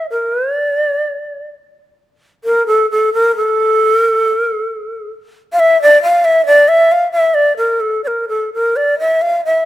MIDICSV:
0, 0, Header, 1, 2, 480
1, 0, Start_track
1, 0, Tempo, 938967
1, 52, Time_signature, 2, 2, 24, 8
1, 1494, Tempo, 911854
1, 1974, Tempo, 875912
1, 3894, Tempo, 940439
1, 5076, End_track
2, 0, Start_track
2, 0, Title_t, "Shakuhachi"
2, 0, Program_c, 0, 77
2, 54, Note_on_c, 0, 70, 77
2, 279, Note_off_c, 0, 70, 0
2, 279, Note_on_c, 0, 74, 77
2, 754, Note_off_c, 0, 74, 0
2, 1249, Note_on_c, 0, 70, 80
2, 1362, Note_off_c, 0, 70, 0
2, 1365, Note_on_c, 0, 69, 82
2, 1480, Note_off_c, 0, 69, 0
2, 1488, Note_on_c, 0, 69, 81
2, 1603, Note_off_c, 0, 69, 0
2, 1608, Note_on_c, 0, 70, 90
2, 1723, Note_off_c, 0, 70, 0
2, 1726, Note_on_c, 0, 69, 87
2, 2061, Note_off_c, 0, 69, 0
2, 2061, Note_on_c, 0, 70, 87
2, 2132, Note_off_c, 0, 70, 0
2, 2132, Note_on_c, 0, 69, 87
2, 2253, Note_off_c, 0, 69, 0
2, 2253, Note_on_c, 0, 70, 87
2, 2324, Note_off_c, 0, 70, 0
2, 2324, Note_on_c, 0, 69, 87
2, 2664, Note_off_c, 0, 69, 0
2, 2902, Note_on_c, 0, 77, 78
2, 2938, Note_on_c, 0, 76, 105
2, 2946, Note_off_c, 0, 77, 0
2, 3053, Note_off_c, 0, 76, 0
2, 3063, Note_on_c, 0, 74, 86
2, 3167, Note_off_c, 0, 74, 0
2, 3176, Note_on_c, 0, 77, 88
2, 3296, Note_on_c, 0, 76, 101
2, 3304, Note_off_c, 0, 77, 0
2, 3411, Note_off_c, 0, 76, 0
2, 3414, Note_on_c, 0, 74, 96
2, 3535, Note_on_c, 0, 76, 97
2, 3543, Note_off_c, 0, 74, 0
2, 3665, Note_on_c, 0, 77, 97
2, 3673, Note_off_c, 0, 76, 0
2, 3773, Note_off_c, 0, 77, 0
2, 3776, Note_on_c, 0, 76, 85
2, 3897, Note_on_c, 0, 74, 91
2, 3905, Note_off_c, 0, 76, 0
2, 4012, Note_off_c, 0, 74, 0
2, 4014, Note_on_c, 0, 70, 73
2, 4132, Note_on_c, 0, 69, 74
2, 4140, Note_off_c, 0, 70, 0
2, 4250, Note_off_c, 0, 69, 0
2, 4253, Note_on_c, 0, 74, 61
2, 4270, Note_on_c, 0, 70, 67
2, 4275, Note_off_c, 0, 74, 0
2, 4363, Note_off_c, 0, 70, 0
2, 4378, Note_on_c, 0, 69, 73
2, 4487, Note_off_c, 0, 69, 0
2, 4506, Note_on_c, 0, 70, 80
2, 4621, Note_on_c, 0, 74, 74
2, 4629, Note_off_c, 0, 70, 0
2, 4736, Note_off_c, 0, 74, 0
2, 4739, Note_on_c, 0, 76, 80
2, 4853, Note_on_c, 0, 77, 92
2, 4861, Note_off_c, 0, 76, 0
2, 4971, Note_off_c, 0, 77, 0
2, 4974, Note_on_c, 0, 76, 73
2, 5076, Note_off_c, 0, 76, 0
2, 5076, End_track
0, 0, End_of_file